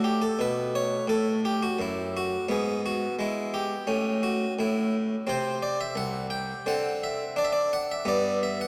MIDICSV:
0, 0, Header, 1, 2, 480
1, 0, Start_track
1, 0, Tempo, 699301
1, 1705, Time_signature, 4, 2, 24, 8
1, 5955, End_track
2, 0, Start_track
2, 0, Title_t, "Harpsichord"
2, 0, Program_c, 0, 6
2, 0, Note_on_c, 0, 45, 52
2, 0, Note_on_c, 0, 57, 37
2, 29, Note_on_c, 0, 67, 82
2, 145, Note_off_c, 0, 67, 0
2, 149, Note_on_c, 0, 69, 75
2, 159, Note_off_c, 0, 45, 0
2, 265, Note_off_c, 0, 69, 0
2, 267, Note_on_c, 0, 47, 51
2, 281, Note_on_c, 0, 71, 85
2, 512, Note_off_c, 0, 71, 0
2, 517, Note_on_c, 0, 73, 80
2, 650, Note_off_c, 0, 47, 0
2, 715, Note_off_c, 0, 73, 0
2, 738, Note_on_c, 0, 45, 50
2, 750, Note_on_c, 0, 69, 81
2, 952, Note_off_c, 0, 69, 0
2, 996, Note_on_c, 0, 67, 80
2, 1111, Note_off_c, 0, 67, 0
2, 1116, Note_on_c, 0, 66, 80
2, 1126, Note_off_c, 0, 45, 0
2, 1226, Note_on_c, 0, 42, 54
2, 1231, Note_off_c, 0, 66, 0
2, 1245, Note_on_c, 0, 64, 77
2, 1475, Note_off_c, 0, 64, 0
2, 1487, Note_on_c, 0, 66, 81
2, 1609, Note_off_c, 0, 42, 0
2, 1675, Note_off_c, 0, 57, 0
2, 1681, Note_off_c, 0, 66, 0
2, 1706, Note_on_c, 0, 44, 58
2, 1707, Note_on_c, 0, 59, 43
2, 1724, Note_on_c, 0, 68, 79
2, 1918, Note_off_c, 0, 68, 0
2, 1961, Note_on_c, 0, 66, 80
2, 2085, Note_off_c, 0, 44, 0
2, 2155, Note_off_c, 0, 66, 0
2, 2188, Note_on_c, 0, 56, 53
2, 2200, Note_on_c, 0, 64, 79
2, 2427, Note_off_c, 0, 64, 0
2, 2429, Note_on_c, 0, 67, 78
2, 2564, Note_off_c, 0, 56, 0
2, 2628, Note_off_c, 0, 59, 0
2, 2658, Note_on_c, 0, 61, 39
2, 2661, Note_on_c, 0, 45, 53
2, 2829, Note_off_c, 0, 67, 0
2, 2904, Note_on_c, 0, 66, 74
2, 3043, Note_off_c, 0, 45, 0
2, 3105, Note_off_c, 0, 66, 0
2, 3148, Note_on_c, 0, 45, 57
2, 3158, Note_on_c, 0, 64, 76
2, 3388, Note_off_c, 0, 64, 0
2, 3526, Note_off_c, 0, 45, 0
2, 3588, Note_off_c, 0, 61, 0
2, 3616, Note_on_c, 0, 60, 42
2, 3620, Note_on_c, 0, 48, 61
2, 3633, Note_on_c, 0, 72, 88
2, 3824, Note_off_c, 0, 72, 0
2, 3861, Note_on_c, 0, 74, 87
2, 3971, Note_off_c, 0, 74, 0
2, 3986, Note_on_c, 0, 76, 88
2, 3992, Note_off_c, 0, 48, 0
2, 4088, Note_on_c, 0, 36, 58
2, 4092, Note_off_c, 0, 76, 0
2, 4099, Note_on_c, 0, 78, 90
2, 4293, Note_off_c, 0, 78, 0
2, 4326, Note_on_c, 0, 79, 91
2, 4469, Note_off_c, 0, 36, 0
2, 4536, Note_off_c, 0, 60, 0
2, 4565, Note_off_c, 0, 79, 0
2, 4574, Note_on_c, 0, 50, 58
2, 4575, Note_on_c, 0, 60, 40
2, 4584, Note_on_c, 0, 78, 90
2, 4816, Note_off_c, 0, 78, 0
2, 4829, Note_on_c, 0, 76, 87
2, 4958, Note_off_c, 0, 50, 0
2, 5025, Note_off_c, 0, 76, 0
2, 5054, Note_on_c, 0, 62, 60
2, 5067, Note_on_c, 0, 74, 92
2, 5105, Note_off_c, 0, 74, 0
2, 5111, Note_on_c, 0, 76, 79
2, 5150, Note_off_c, 0, 76, 0
2, 5165, Note_on_c, 0, 74, 85
2, 5304, Note_off_c, 0, 74, 0
2, 5306, Note_on_c, 0, 78, 96
2, 5423, Note_off_c, 0, 78, 0
2, 5433, Note_on_c, 0, 76, 77
2, 5444, Note_off_c, 0, 62, 0
2, 5518, Note_off_c, 0, 60, 0
2, 5528, Note_on_c, 0, 43, 66
2, 5528, Note_on_c, 0, 59, 41
2, 5547, Note_off_c, 0, 76, 0
2, 5547, Note_on_c, 0, 74, 96
2, 5749, Note_off_c, 0, 74, 0
2, 5787, Note_on_c, 0, 76, 90
2, 5902, Note_off_c, 0, 76, 0
2, 5911, Note_on_c, 0, 78, 90
2, 5916, Note_off_c, 0, 43, 0
2, 5955, Note_off_c, 0, 59, 0
2, 5955, Note_off_c, 0, 78, 0
2, 5955, End_track
0, 0, End_of_file